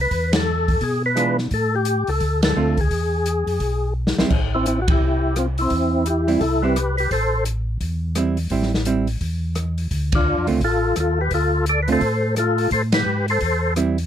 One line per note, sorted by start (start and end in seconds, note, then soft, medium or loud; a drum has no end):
0.01 0.32 B4 medium
0.11 0.77 E2 medium
0.11 kick soft
0.11 open hi-hat soft
0.33 0.84 A4 medium
0.33 snare medium
0.33 ride medium
0.68 kick medium
0.68 open hi-hat soft
0.81 1.48 B2 medium
0.81 1.03 G#4 loud
0.81 kick soft
0.81 open hi-hat soft
1.06 1.37 B4 loud
1.16 1.36 E3 medium
1.16 1.36 G#3 medium
1.16 1.36 D4 medium
1.16 1.36 F4 medium
1.16 cross-stick medium
1.16 closed hi-hat medium
1.38 snare soft
1.51 2.04 A2 medium
1.51 1.75 A4 medium
1.51 kick soft
1.51 open hi-hat soft
1.76 2.10 G4 loud
1.85 closed hi-hat medium
2.07 2.20 C#2 medium
2.07 2.41 A4 medium
2.07 open hi-hat soft
2.20 2.54 D2 medium
2.20 kick soft
2.20 open hi-hat soft
2.42 2.80 A4 loud
2.42 snare medium
2.42 ride medium
2.57 2.89 D2 medium
2.57 2.76 D3 medium
2.57 2.76 A3 medium
2.57 2.76 C4 soft
2.57 2.77 F4 medium
2.77 3.93 G#4 medium
2.77 kick soft
2.77 open hi-hat soft
2.91 3.44 E2 medium
2.91 kick soft
2.91 open hi-hat soft
3.26 closed hi-hat medium
3.47 3.59 F2 medium
3.47 open hi-hat soft
3.60 4.14 B1 medium
3.60 kick soft
3.60 open hi-hat soft
4.07 snare medium
4.18 4.24 B1 soft
4.18 4.30 G3 medium
4.18 4.30 C4 medium
4.18 4.31 E4 medium
4.18 snare medium
4.30 4.97 A1 medium
4.30 kick medium
4.30 crash medium
4.55 4.66 C4 medium
4.55 4.66 E4 medium
4.66 4.79 C4 medium
4.66 4.80 E4 medium
4.66 closed hi-hat medium
4.82 4.89 F#4 medium
4.88 5.35 E4 medium
4.88 5.39 G4 medium
4.88 kick medium
4.88 ride medium
5.00 5.67 C2 medium
5.36 5.48 C4 medium
5.36 5.46 F4 medium
5.36 cross-stick medium
5.36 closed hi-hat medium
5.58 6.05 C4 medium
5.58 6.08 E4 medium
5.58 open hi-hat soft
5.70 6.38 E2 medium
5.70 kick soft
5.70 open hi-hat soft
6.06 6.43 G4 medium
6.06 closed hi-hat medium
6.10 6.41 E4 medium
6.28 6.40 G3 medium
6.28 6.40 C4 medium
6.28 6.40 E4 medium
6.28 open hi-hat soft
6.41 7.07 C2 medium
6.41 6.62 E4 medium
6.41 6.64 A4 loud
6.41 kick soft
6.41 open hi-hat soft
6.62 6.75 G3 medium
6.62 6.75 C4 medium
6.62 6.75 E4 medium
6.62 6.96 G4 medium
6.62 6.96 B4 medium
6.76 cross-stick medium
6.76 closed hi-hat soft
6.97 7.11 G4 medium
6.97 7.10 B4 medium
6.97 open hi-hat soft
7.11 7.78 A1 medium
7.11 7.45 A4 medium
7.11 7.44 C5 loud
7.11 kick soft
7.11 open hi-hat soft
7.45 closed hi-hat medium
7.81 8.47 E2 medium
7.81 kick soft
7.81 open hi-hat soft
8.15 8.36 G3 medium
8.15 8.36 C4 medium
8.15 8.37 E4 medium
8.15 cross-stick medium
8.15 closed hi-hat medium
8.37 open hi-hat soft
8.50 9.17 A1 medium
8.50 8.71 G3 medium
8.50 8.71 C4 medium
8.50 8.72 E4 medium
8.50 kick soft
8.50 open hi-hat soft
8.62 snare soft
8.74 snare soft
8.85 9.06 G3 medium
8.85 9.06 C4 medium
8.85 9.06 E4 medium
8.85 closed hi-hat medium
9.07 open hi-hat soft
9.21 9.88 E2 medium
9.21 kick soft
9.21 open hi-hat soft
9.55 cross-stick medium
9.55 closed hi-hat soft
9.78 open hi-hat soft
9.91 10.35 D2 medium
9.91 kick soft
9.91 open hi-hat soft
10.12 10.47 D4 medium
10.12 10.47 F4 medium
10.12 kick medium
10.12 ride medium
10.38 10.49 F2 medium
10.47 10.60 C#2 medium
10.47 10.59 D3 medium
10.47 10.60 A3 medium
10.47 10.60 C4 medium
10.47 10.60 F4 medium
10.47 open hi-hat soft
10.61 10.94 A1 medium
10.61 10.96 F4 medium
10.61 10.99 A4 medium
10.61 kick soft
10.61 open hi-hat soft
10.96 11.29 D#2 medium
10.96 cross-stick medium
10.96 closed hi-hat soft
11.00 11.19 F4 medium
11.00 11.21 A4 medium
11.21 11.32 G4 medium
11.21 11.33 B4 medium
11.31 11.98 D2 medium
11.31 11.65 F4 medium
11.31 11.66 A4 medium
11.31 kick soft
11.31 open hi-hat soft
11.66 11.80 A4 medium
11.66 11.81 D5 loud
11.66 closed hi-hat medium
11.83 11.90 B4 medium
11.88 12.00 D3 medium
11.88 12.00 A3 medium
11.88 12.00 C4 medium
11.88 12.00 F4 medium
11.88 open hi-hat soft
11.92 12.35 A4 medium
11.92 12.35 C5 medium
12.01 12.68 A2 medium
12.01 kick soft
12.01 open hi-hat soft
12.36 12.70 F4 medium
12.36 12.70 A4 medium
12.36 cross-stick medium
12.36 closed hi-hat soft
12.58 open hi-hat soft
12.71 13.03 A2 medium
12.71 12.83 A4 medium
12.71 12.82 C5 loud
12.71 kick soft
12.71 open hi-hat soft
12.92 13.27 G4 medium
12.92 13.26 B4 medium
12.92 snare medium
12.92 ride medium
13.06 13.39 G#2 medium
13.28 13.74 A4 medium
13.28 13.74 C5 medium
13.28 open hi-hat soft
13.40 14.06 E2 medium
13.40 kick soft
13.40 open hi-hat soft
13.76 13.96 G3 medium
13.76 13.96 C4 medium
13.76 13.96 E4 medium
13.76 cross-stick medium
13.76 closed hi-hat medium
13.98 open hi-hat soft